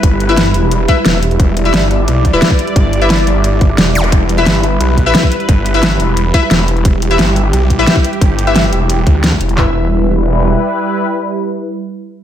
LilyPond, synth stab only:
\new Staff \with { instrumentName = "Synth stab" } { \time 4/4 \key e \minor \tempo 4 = 176 r8. <e' b' e''>16 r4. <e' b' e''>16 r4 r16 | r8. <e' b' e''>16 r4. r16 <e' b' e''>8 r8. | r8. <e' b' e''>16 r2. | r8. <e' b' e''>16 r4. r16 <e' b' e''>8 r8. |
r8. <e' b' e''>16 r4. <e' b' e''>16 r4 r16 | r8. <e' b' e''>16 r4. r16 <e' b' e''>8 r8. | r8. <e' b' e''>16 r2. | <e' b' e''>1~ |
<e' b' e''>1 | }